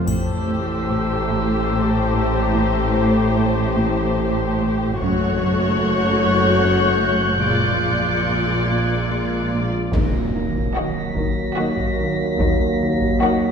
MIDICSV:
0, 0, Header, 1, 13, 480
1, 0, Start_track
1, 0, Tempo, 821918
1, 42, Time_signature, 3, 2, 24, 8
1, 7893, End_track
2, 0, Start_track
2, 0, Title_t, "Violin section"
2, 0, Program_c, 0, 48
2, 40, Note_on_c, 0, 81, 33
2, 45, Note_on_c, 0, 88, 34
2, 526, Note_on_c, 0, 82, 32
2, 1700, Note_off_c, 0, 88, 0
2, 2658, Note_off_c, 0, 81, 0
2, 2661, Note_off_c, 0, 82, 0
2, 2925, Note_on_c, 0, 90, 47
2, 3403, Note_on_c, 0, 91, 40
2, 3885, Note_on_c, 0, 97, 35
2, 5009, Note_off_c, 0, 91, 0
2, 5009, Note_on_c, 0, 92, 40
2, 5539, Note_off_c, 0, 92, 0
2, 5540, Note_off_c, 0, 90, 0
2, 5540, Note_off_c, 0, 97, 0
2, 5806, Note_on_c, 0, 94, 34
2, 6290, Note_on_c, 0, 95, 31
2, 7893, Note_off_c, 0, 94, 0
2, 7893, Note_off_c, 0, 95, 0
2, 7893, End_track
3, 0, Start_track
3, 0, Title_t, "Violin section"
3, 0, Program_c, 1, 48
3, 37, Note_on_c, 1, 72, 39
3, 2896, Note_off_c, 1, 72, 0
3, 2924, Note_on_c, 1, 73, 52
3, 4363, Note_off_c, 1, 73, 0
3, 4365, Note_on_c, 1, 74, 33
3, 5663, Note_off_c, 1, 74, 0
3, 6278, Note_on_c, 1, 75, 38
3, 6641, Note_off_c, 1, 75, 0
3, 6758, Note_on_c, 1, 75, 45
3, 7121, Note_off_c, 1, 75, 0
3, 7721, Note_on_c, 1, 75, 42
3, 7893, Note_off_c, 1, 75, 0
3, 7893, End_track
4, 0, Start_track
4, 0, Title_t, "Violin section"
4, 0, Program_c, 2, 48
4, 6276, Note_on_c, 2, 66, 40
4, 6639, Note_off_c, 2, 66, 0
4, 6757, Note_on_c, 2, 66, 39
4, 7120, Note_off_c, 2, 66, 0
4, 7722, Note_on_c, 2, 66, 47
4, 7893, Note_off_c, 2, 66, 0
4, 7893, End_track
5, 0, Start_track
5, 0, Title_t, "Viola section"
5, 0, Program_c, 3, 48
5, 38, Note_on_c, 3, 57, 41
5, 39, Note_on_c, 3, 67, 42
5, 2897, Note_off_c, 3, 57, 0
5, 2897, Note_off_c, 3, 67, 0
5, 2919, Note_on_c, 3, 57, 54
5, 2920, Note_on_c, 3, 66, 54
5, 4337, Note_off_c, 3, 57, 0
5, 4361, Note_off_c, 3, 66, 0
5, 4361, Note_on_c, 3, 56, 37
5, 4362, Note_on_c, 3, 65, 37
5, 5661, Note_off_c, 3, 56, 0
5, 5662, Note_off_c, 3, 65, 0
5, 6282, Note_on_c, 3, 58, 39
5, 6643, Note_off_c, 3, 58, 0
5, 6760, Note_on_c, 3, 58, 43
5, 7122, Note_off_c, 3, 58, 0
5, 7718, Note_on_c, 3, 58, 43
5, 7893, Note_off_c, 3, 58, 0
5, 7893, End_track
6, 0, Start_track
6, 0, Title_t, "Trombone section"
6, 0, Program_c, 4, 61
6, 5799, Note_on_c, 4, 58, 45
6, 5800, Note_on_c, 4, 54, 46
6, 7893, Note_off_c, 4, 54, 0
6, 7893, Note_off_c, 4, 58, 0
6, 7893, End_track
7, 0, Start_track
7, 0, Title_t, "Cello section"
7, 0, Program_c, 5, 48
7, 43, Note_on_c, 5, 45, 49
7, 187, Note_off_c, 5, 45, 0
7, 285, Note_on_c, 5, 45, 36
7, 428, Note_off_c, 5, 45, 0
7, 526, Note_on_c, 5, 45, 35
7, 669, Note_off_c, 5, 45, 0
7, 765, Note_on_c, 5, 45, 51
7, 908, Note_off_c, 5, 45, 0
7, 1004, Note_on_c, 5, 45, 38
7, 1148, Note_off_c, 5, 45, 0
7, 1249, Note_on_c, 5, 45, 42
7, 1391, Note_off_c, 5, 45, 0
7, 1487, Note_on_c, 5, 45, 61
7, 1630, Note_off_c, 5, 45, 0
7, 1729, Note_on_c, 5, 45, 42
7, 1871, Note_off_c, 5, 45, 0
7, 1965, Note_on_c, 5, 45, 47
7, 2108, Note_off_c, 5, 45, 0
7, 2204, Note_on_c, 5, 45, 67
7, 2348, Note_off_c, 5, 45, 0
7, 2444, Note_on_c, 5, 45, 46
7, 2588, Note_off_c, 5, 45, 0
7, 2687, Note_on_c, 5, 45, 50
7, 2829, Note_off_c, 5, 45, 0
7, 2927, Note_on_c, 5, 42, 62
7, 3070, Note_off_c, 5, 42, 0
7, 3169, Note_on_c, 5, 42, 45
7, 3311, Note_off_c, 5, 42, 0
7, 3406, Note_on_c, 5, 42, 42
7, 3549, Note_off_c, 5, 42, 0
7, 3644, Note_on_c, 5, 42, 55
7, 3788, Note_off_c, 5, 42, 0
7, 3885, Note_on_c, 5, 42, 37
7, 4028, Note_off_c, 5, 42, 0
7, 4126, Note_on_c, 5, 42, 32
7, 4269, Note_off_c, 5, 42, 0
7, 4364, Note_on_c, 5, 46, 43
7, 4508, Note_off_c, 5, 46, 0
7, 4603, Note_on_c, 5, 46, 28
7, 4747, Note_off_c, 5, 46, 0
7, 4843, Note_on_c, 5, 46, 28
7, 4987, Note_off_c, 5, 46, 0
7, 5084, Note_on_c, 5, 46, 41
7, 5227, Note_off_c, 5, 46, 0
7, 5326, Note_on_c, 5, 46, 28
7, 5469, Note_off_c, 5, 46, 0
7, 5563, Note_on_c, 5, 46, 28
7, 5707, Note_off_c, 5, 46, 0
7, 5805, Note_on_c, 5, 51, 46
7, 5948, Note_off_c, 5, 51, 0
7, 6048, Note_on_c, 5, 51, 34
7, 6190, Note_off_c, 5, 51, 0
7, 6285, Note_on_c, 5, 51, 34
7, 6428, Note_off_c, 5, 51, 0
7, 6524, Note_on_c, 5, 51, 49
7, 6667, Note_off_c, 5, 51, 0
7, 6770, Note_on_c, 5, 51, 37
7, 6912, Note_off_c, 5, 51, 0
7, 7007, Note_on_c, 5, 51, 35
7, 7150, Note_off_c, 5, 51, 0
7, 7247, Note_on_c, 5, 51, 50
7, 7390, Note_off_c, 5, 51, 0
7, 7486, Note_on_c, 5, 51, 38
7, 7629, Note_off_c, 5, 51, 0
7, 7725, Note_on_c, 5, 51, 34
7, 7868, Note_off_c, 5, 51, 0
7, 7893, End_track
8, 0, Start_track
8, 0, Title_t, "Cello section"
8, 0, Program_c, 6, 48
8, 39, Note_on_c, 6, 45, 44
8, 2897, Note_off_c, 6, 45, 0
8, 2921, Note_on_c, 6, 42, 55
8, 4362, Note_off_c, 6, 42, 0
8, 4364, Note_on_c, 6, 46, 37
8, 5663, Note_off_c, 6, 46, 0
8, 5801, Note_on_c, 6, 39, 43
8, 6186, Note_off_c, 6, 39, 0
8, 7240, Note_on_c, 6, 39, 49
8, 7626, Note_off_c, 6, 39, 0
8, 7893, End_track
9, 0, Start_track
9, 0, Title_t, "Double bass section"
9, 0, Program_c, 7, 48
9, 44, Note_on_c, 7, 33, 46
9, 2900, Note_off_c, 7, 33, 0
9, 2924, Note_on_c, 7, 30, 59
9, 4363, Note_off_c, 7, 30, 0
9, 4364, Note_on_c, 7, 34, 38
9, 5663, Note_off_c, 7, 34, 0
9, 5801, Note_on_c, 7, 39, 47
9, 6186, Note_off_c, 7, 39, 0
9, 7239, Note_on_c, 7, 39, 50
9, 7625, Note_off_c, 7, 39, 0
9, 7893, End_track
10, 0, Start_track
10, 0, Title_t, "Synth drone"
10, 0, Program_c, 8, 95
10, 44, Note_on_c, 8, 33, 59
10, 2923, Note_off_c, 8, 33, 0
10, 2927, Note_on_c, 8, 30, 66
10, 4359, Note_on_c, 8, 34, 60
10, 4364, Note_off_c, 8, 30, 0
10, 5795, Note_on_c, 8, 39, 63
10, 5801, Note_off_c, 8, 34, 0
10, 7893, Note_off_c, 8, 39, 0
10, 7893, End_track
11, 0, Start_track
11, 0, Title_t, "Impact"
11, 0, Program_c, 10, 103
11, 5801, Note_on_c, 10, 60, 46
11, 7241, Note_off_c, 10, 60, 0
11, 7893, End_track
12, 0, Start_track
12, 0, Title_t, "Taiko and cinematic ensemble drums"
12, 43, Note_on_c, 9, 41, 46
12, 101, Note_off_c, 9, 41, 0
12, 2922, Note_on_c, 9, 41, 55
12, 2981, Note_off_c, 9, 41, 0
12, 5799, Note_on_c, 9, 41, 72
12, 5857, Note_off_c, 9, 41, 0
12, 6161, Note_on_c, 9, 41, 56
12, 6219, Note_off_c, 9, 41, 0
12, 6520, Note_on_c, 9, 41, 62
12, 6579, Note_off_c, 9, 41, 0
12, 6880, Note_on_c, 9, 41, 64
12, 6939, Note_off_c, 9, 41, 0
12, 7239, Note_on_c, 9, 41, 72
12, 7298, Note_off_c, 9, 41, 0
12, 7601, Note_on_c, 9, 41, 62
12, 7659, Note_off_c, 9, 41, 0
12, 7893, End_track
13, 0, Start_track
13, 0, Title_t, "Drums"
13, 44, Note_on_c, 9, 81, 29
13, 102, Note_off_c, 9, 81, 0
13, 7893, End_track
0, 0, End_of_file